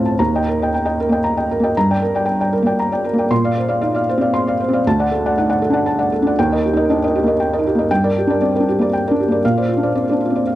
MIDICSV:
0, 0, Header, 1, 2, 480
1, 0, Start_track
1, 0, Tempo, 520382
1, 175, Time_signature, 3, 2, 24, 8
1, 3528, Tempo, 511509
1, 9842, End_track
2, 0, Start_track
2, 0, Title_t, "Felt piano"
2, 0, Program_c, 0, 0
2, 0, Control_c, 0, 64, 127
2, 0, Note_on_c, 0, 38, 58
2, 0, Note_on_c, 0, 45, 46
2, 0, Note_on_c, 0, 60, 46
2, 0, Note_on_c, 0, 65, 41
2, 0, Note_on_c, 0, 72, 53
2, 0, Note_on_c, 0, 77, 52
2, 0, Note_on_c, 0, 81, 49
2, 53, Note_off_c, 0, 81, 0
2, 53, Note_on_c, 0, 81, 45
2, 128, Note_off_c, 0, 45, 0
2, 138, Note_off_c, 0, 38, 0
2, 176, Note_off_c, 0, 81, 0
2, 176, Note_on_c, 0, 82, 71
2, 177, Note_off_c, 0, 60, 0
2, 180, Note_on_c, 0, 39, 55
2, 195, Control_c, 0, 64, 0
2, 199, Note_off_c, 0, 72, 0
2, 201, Note_off_c, 0, 77, 0
2, 203, Note_off_c, 0, 65, 0
2, 325, Note_on_c, 0, 75, 47
2, 330, Note_on_c, 0, 79, 48
2, 372, Note_off_c, 0, 82, 0
2, 375, Control_c, 0, 64, 127
2, 423, Note_off_c, 0, 75, 0
2, 426, Note_off_c, 0, 79, 0
2, 445, Note_on_c, 0, 70, 44
2, 574, Note_on_c, 0, 75, 46
2, 582, Note_on_c, 0, 79, 50
2, 627, Note_off_c, 0, 70, 0
2, 668, Note_off_c, 0, 75, 0
2, 671, Note_off_c, 0, 79, 0
2, 684, Note_on_c, 0, 79, 49
2, 777, Note_off_c, 0, 79, 0
2, 789, Note_on_c, 0, 75, 47
2, 791, Note_on_c, 0, 79, 49
2, 893, Note_off_c, 0, 75, 0
2, 895, Note_off_c, 0, 79, 0
2, 925, Note_on_c, 0, 70, 50
2, 1005, Note_on_c, 0, 58, 51
2, 1035, Note_on_c, 0, 75, 45
2, 1037, Note_on_c, 0, 79, 51
2, 1103, Note_off_c, 0, 70, 0
2, 1135, Note_off_c, 0, 75, 0
2, 1136, Note_off_c, 0, 79, 0
2, 1143, Note_on_c, 0, 82, 54
2, 1247, Note_off_c, 0, 58, 0
2, 1266, Note_on_c, 0, 75, 44
2, 1268, Note_on_c, 0, 79, 46
2, 1331, Note_off_c, 0, 82, 0
2, 1369, Note_off_c, 0, 75, 0
2, 1371, Note_off_c, 0, 79, 0
2, 1395, Note_on_c, 0, 70, 45
2, 1473, Note_on_c, 0, 58, 48
2, 1508, Note_on_c, 0, 79, 48
2, 1512, Note_on_c, 0, 75, 44
2, 1577, Note_off_c, 0, 70, 0
2, 1582, Note_off_c, 0, 39, 0
2, 1611, Note_off_c, 0, 79, 0
2, 1613, Note_off_c, 0, 75, 0
2, 1625, Note_off_c, 0, 58, 0
2, 1633, Control_c, 0, 64, 0
2, 1635, Note_on_c, 0, 82, 68
2, 1636, Note_on_c, 0, 43, 60
2, 1758, Note_on_c, 0, 74, 44
2, 1762, Note_on_c, 0, 79, 51
2, 1770, Control_c, 0, 64, 127
2, 1818, Note_off_c, 0, 82, 0
2, 1856, Note_off_c, 0, 74, 0
2, 1859, Note_off_c, 0, 79, 0
2, 1863, Note_on_c, 0, 70, 45
2, 1981, Note_on_c, 0, 74, 46
2, 1990, Note_on_c, 0, 79, 51
2, 2051, Note_off_c, 0, 70, 0
2, 2067, Note_off_c, 0, 79, 0
2, 2080, Note_on_c, 0, 79, 51
2, 2086, Note_off_c, 0, 74, 0
2, 2210, Note_off_c, 0, 79, 0
2, 2217, Note_on_c, 0, 74, 44
2, 2224, Note_on_c, 0, 79, 50
2, 2323, Note_off_c, 0, 74, 0
2, 2327, Note_off_c, 0, 79, 0
2, 2332, Note_on_c, 0, 70, 52
2, 2420, Note_on_c, 0, 58, 46
2, 2452, Note_on_c, 0, 74, 47
2, 2460, Note_on_c, 0, 79, 54
2, 2523, Note_off_c, 0, 70, 0
2, 2560, Note_off_c, 0, 74, 0
2, 2564, Note_off_c, 0, 79, 0
2, 2578, Note_on_c, 0, 82, 55
2, 2672, Note_off_c, 0, 58, 0
2, 2694, Note_on_c, 0, 74, 43
2, 2703, Note_on_c, 0, 79, 47
2, 2767, Note_off_c, 0, 82, 0
2, 2802, Note_off_c, 0, 74, 0
2, 2806, Note_off_c, 0, 79, 0
2, 2808, Note_on_c, 0, 70, 49
2, 2890, Note_on_c, 0, 58, 47
2, 2934, Note_on_c, 0, 74, 47
2, 2941, Note_on_c, 0, 79, 50
2, 3002, Note_off_c, 0, 70, 0
2, 3025, Note_off_c, 0, 43, 0
2, 3041, Note_off_c, 0, 74, 0
2, 3045, Note_off_c, 0, 79, 0
2, 3049, Note_on_c, 0, 46, 63
2, 3050, Note_on_c, 0, 84, 72
2, 3051, Note_off_c, 0, 58, 0
2, 3067, Control_c, 0, 64, 0
2, 3175, Note_on_c, 0, 74, 48
2, 3181, Note_on_c, 0, 77, 53
2, 3223, Control_c, 0, 64, 127
2, 3242, Note_off_c, 0, 84, 0
2, 3281, Note_off_c, 0, 74, 0
2, 3284, Note_off_c, 0, 77, 0
2, 3301, Note_on_c, 0, 72, 49
2, 3398, Note_on_c, 0, 74, 51
2, 3404, Note_on_c, 0, 77, 51
2, 3486, Note_off_c, 0, 72, 0
2, 3505, Note_off_c, 0, 77, 0
2, 3510, Note_off_c, 0, 74, 0
2, 3519, Note_on_c, 0, 77, 54
2, 3526, Note_on_c, 0, 63, 42
2, 3636, Note_off_c, 0, 77, 0
2, 3642, Note_on_c, 0, 74, 50
2, 3650, Note_on_c, 0, 77, 55
2, 3687, Note_off_c, 0, 63, 0
2, 3753, Note_off_c, 0, 74, 0
2, 3757, Note_off_c, 0, 77, 0
2, 3779, Note_on_c, 0, 72, 56
2, 3858, Note_on_c, 0, 60, 54
2, 3890, Note_on_c, 0, 74, 47
2, 3897, Note_on_c, 0, 77, 52
2, 3965, Note_off_c, 0, 72, 0
2, 3997, Note_off_c, 0, 74, 0
2, 4001, Note_off_c, 0, 77, 0
2, 4008, Note_on_c, 0, 84, 61
2, 4109, Note_off_c, 0, 60, 0
2, 4136, Note_on_c, 0, 74, 48
2, 4146, Note_on_c, 0, 77, 55
2, 4200, Note_off_c, 0, 84, 0
2, 4241, Note_off_c, 0, 74, 0
2, 4246, Note_off_c, 0, 77, 0
2, 4258, Note_on_c, 0, 72, 49
2, 4334, Note_on_c, 0, 60, 55
2, 4377, Note_on_c, 0, 74, 49
2, 4382, Note_on_c, 0, 77, 57
2, 4446, Note_off_c, 0, 72, 0
2, 4451, Note_off_c, 0, 46, 0
2, 4482, Note_off_c, 0, 74, 0
2, 4485, Note_off_c, 0, 77, 0
2, 4493, Note_off_c, 0, 60, 0
2, 4506, Note_on_c, 0, 38, 64
2, 4507, Control_c, 0, 64, 0
2, 4511, Note_on_c, 0, 81, 76
2, 4625, Note_on_c, 0, 74, 53
2, 4632, Note_on_c, 0, 78, 56
2, 4672, Control_c, 0, 64, 127
2, 4694, Note_off_c, 0, 81, 0
2, 4727, Note_off_c, 0, 74, 0
2, 4731, Note_off_c, 0, 78, 0
2, 4738, Note_on_c, 0, 69, 58
2, 4874, Note_on_c, 0, 74, 55
2, 4875, Note_on_c, 0, 78, 57
2, 4927, Note_off_c, 0, 69, 0
2, 4972, Note_off_c, 0, 74, 0
2, 4972, Note_off_c, 0, 78, 0
2, 4986, Note_on_c, 0, 78, 58
2, 4992, Note_on_c, 0, 63, 44
2, 5082, Note_off_c, 0, 78, 0
2, 5096, Note_on_c, 0, 78, 60
2, 5098, Note_on_c, 0, 74, 48
2, 5141, Note_off_c, 0, 63, 0
2, 5202, Note_off_c, 0, 74, 0
2, 5202, Note_off_c, 0, 78, 0
2, 5211, Note_on_c, 0, 69, 59
2, 5289, Note_on_c, 0, 62, 54
2, 5318, Note_on_c, 0, 78, 56
2, 5323, Note_on_c, 0, 74, 50
2, 5401, Note_off_c, 0, 69, 0
2, 5430, Note_off_c, 0, 78, 0
2, 5433, Note_off_c, 0, 74, 0
2, 5439, Note_on_c, 0, 81, 63
2, 5542, Note_off_c, 0, 62, 0
2, 5558, Note_on_c, 0, 78, 53
2, 5559, Note_on_c, 0, 74, 49
2, 5632, Note_off_c, 0, 81, 0
2, 5668, Note_off_c, 0, 74, 0
2, 5668, Note_off_c, 0, 78, 0
2, 5684, Note_on_c, 0, 69, 54
2, 5779, Note_on_c, 0, 62, 51
2, 5820, Note_on_c, 0, 74, 53
2, 5823, Note_on_c, 0, 78, 53
2, 5874, Note_off_c, 0, 69, 0
2, 5892, Note_off_c, 0, 38, 0
2, 5919, Note_off_c, 0, 74, 0
2, 5921, Note_off_c, 0, 78, 0
2, 5929, Note_off_c, 0, 62, 0
2, 5934, Note_on_c, 0, 79, 84
2, 5936, Control_c, 0, 64, 0
2, 5939, Note_on_c, 0, 39, 67
2, 6061, Note_on_c, 0, 75, 55
2, 6067, Note_on_c, 0, 70, 56
2, 6072, Control_c, 0, 64, 127
2, 6118, Note_off_c, 0, 79, 0
2, 6159, Note_off_c, 0, 75, 0
2, 6162, Note_off_c, 0, 70, 0
2, 6186, Note_on_c, 0, 67, 52
2, 6258, Note_on_c, 0, 63, 53
2, 6288, Note_on_c, 0, 75, 57
2, 6292, Note_on_c, 0, 70, 54
2, 6361, Note_off_c, 0, 67, 0
2, 6389, Note_off_c, 0, 75, 0
2, 6391, Note_off_c, 0, 70, 0
2, 6412, Note_on_c, 0, 62, 47
2, 6414, Note_on_c, 0, 75, 61
2, 6498, Note_off_c, 0, 63, 0
2, 6530, Note_off_c, 0, 75, 0
2, 6543, Note_on_c, 0, 70, 51
2, 6544, Note_on_c, 0, 75, 58
2, 6559, Note_off_c, 0, 62, 0
2, 6580, Note_on_c, 0, 63, 54
2, 6634, Note_off_c, 0, 70, 0
2, 6635, Note_off_c, 0, 75, 0
2, 6653, Note_on_c, 0, 67, 58
2, 6725, Note_on_c, 0, 58, 57
2, 6757, Note_on_c, 0, 70, 52
2, 6767, Note_on_c, 0, 75, 54
2, 6817, Note_off_c, 0, 63, 0
2, 6830, Note_off_c, 0, 67, 0
2, 6860, Note_off_c, 0, 70, 0
2, 6866, Note_off_c, 0, 75, 0
2, 6883, Note_on_c, 0, 79, 58
2, 6971, Note_off_c, 0, 58, 0
2, 7008, Note_on_c, 0, 70, 49
2, 7009, Note_on_c, 0, 75, 54
2, 7061, Note_on_c, 0, 63, 50
2, 7067, Note_off_c, 0, 79, 0
2, 7107, Note_off_c, 0, 70, 0
2, 7108, Note_off_c, 0, 75, 0
2, 7135, Note_on_c, 0, 67, 49
2, 7210, Note_on_c, 0, 58, 49
2, 7245, Note_on_c, 0, 70, 48
2, 7248, Note_on_c, 0, 75, 51
2, 7301, Note_off_c, 0, 63, 0
2, 7314, Note_off_c, 0, 67, 0
2, 7320, Note_off_c, 0, 39, 0
2, 7346, Note_off_c, 0, 70, 0
2, 7347, Note_off_c, 0, 75, 0
2, 7360, Note_off_c, 0, 58, 0
2, 7360, Note_on_c, 0, 43, 63
2, 7361, Note_on_c, 0, 79, 82
2, 7367, Control_c, 0, 64, 0
2, 7483, Note_on_c, 0, 70, 52
2, 7484, Note_on_c, 0, 74, 54
2, 7514, Control_c, 0, 64, 127
2, 7547, Note_off_c, 0, 79, 0
2, 7585, Note_off_c, 0, 70, 0
2, 7585, Note_off_c, 0, 74, 0
2, 7616, Note_on_c, 0, 67, 49
2, 7702, Note_on_c, 0, 62, 45
2, 7728, Note_on_c, 0, 70, 50
2, 7731, Note_on_c, 0, 74, 51
2, 7795, Note_off_c, 0, 67, 0
2, 7821, Note_off_c, 0, 74, 0
2, 7828, Note_off_c, 0, 70, 0
2, 7835, Note_on_c, 0, 74, 55
2, 7838, Note_on_c, 0, 60, 44
2, 7942, Note_off_c, 0, 62, 0
2, 7961, Note_off_c, 0, 74, 0
2, 7966, Note_on_c, 0, 70, 45
2, 7975, Note_on_c, 0, 74, 51
2, 7994, Note_off_c, 0, 60, 0
2, 8011, Note_on_c, 0, 62, 45
2, 8066, Note_off_c, 0, 70, 0
2, 8071, Note_off_c, 0, 74, 0
2, 8091, Note_on_c, 0, 67, 54
2, 8186, Note_on_c, 0, 58, 50
2, 8208, Note_on_c, 0, 70, 47
2, 8217, Note_on_c, 0, 74, 52
2, 8254, Note_off_c, 0, 62, 0
2, 8269, Note_off_c, 0, 67, 0
2, 8305, Note_off_c, 0, 70, 0
2, 8310, Note_off_c, 0, 74, 0
2, 8322, Note_on_c, 0, 79, 58
2, 8419, Note_off_c, 0, 58, 0
2, 8456, Note_on_c, 0, 74, 45
2, 8458, Note_on_c, 0, 70, 45
2, 8490, Note_on_c, 0, 62, 49
2, 8504, Note_off_c, 0, 79, 0
2, 8549, Note_off_c, 0, 74, 0
2, 8550, Note_off_c, 0, 70, 0
2, 8573, Note_on_c, 0, 67, 46
2, 8649, Note_on_c, 0, 58, 45
2, 8681, Note_on_c, 0, 70, 42
2, 8685, Note_on_c, 0, 74, 48
2, 8732, Note_off_c, 0, 62, 0
2, 8750, Note_off_c, 0, 67, 0
2, 8751, Note_off_c, 0, 43, 0
2, 8781, Note_off_c, 0, 70, 0
2, 8783, Note_off_c, 0, 74, 0
2, 8796, Note_off_c, 0, 58, 0
2, 8801, Control_c, 0, 64, 0
2, 8806, Note_on_c, 0, 77, 71
2, 8810, Note_on_c, 0, 46, 58
2, 8924, Note_on_c, 0, 74, 48
2, 8928, Note_on_c, 0, 72, 44
2, 8952, Control_c, 0, 64, 127
2, 8987, Note_off_c, 0, 77, 0
2, 9023, Note_off_c, 0, 74, 0
2, 9023, Note_on_c, 0, 65, 44
2, 9025, Note_off_c, 0, 72, 0
2, 9109, Note_on_c, 0, 62, 40
2, 9163, Note_on_c, 0, 72, 43
2, 9165, Note_on_c, 0, 74, 48
2, 9218, Note_off_c, 0, 65, 0
2, 9265, Note_off_c, 0, 72, 0
2, 9266, Note_off_c, 0, 74, 0
2, 9277, Note_on_c, 0, 60, 38
2, 9280, Note_on_c, 0, 74, 47
2, 9368, Note_off_c, 0, 62, 0
2, 9396, Note_off_c, 0, 74, 0
2, 9410, Note_on_c, 0, 74, 44
2, 9412, Note_on_c, 0, 72, 38
2, 9434, Note_on_c, 0, 62, 41
2, 9436, Note_off_c, 0, 60, 0
2, 9512, Note_off_c, 0, 74, 0
2, 9513, Note_off_c, 0, 72, 0
2, 9516, Note_on_c, 0, 65, 44
2, 9605, Note_on_c, 0, 60, 43
2, 9656, Note_on_c, 0, 72, 39
2, 9658, Note_on_c, 0, 74, 39
2, 9697, Note_off_c, 0, 62, 0
2, 9713, Note_off_c, 0, 65, 0
2, 9760, Note_off_c, 0, 72, 0
2, 9761, Note_off_c, 0, 74, 0
2, 9763, Note_on_c, 0, 77, 44
2, 9842, Note_off_c, 0, 46, 0
2, 9842, Note_off_c, 0, 60, 0
2, 9842, Note_off_c, 0, 77, 0
2, 9842, End_track
0, 0, End_of_file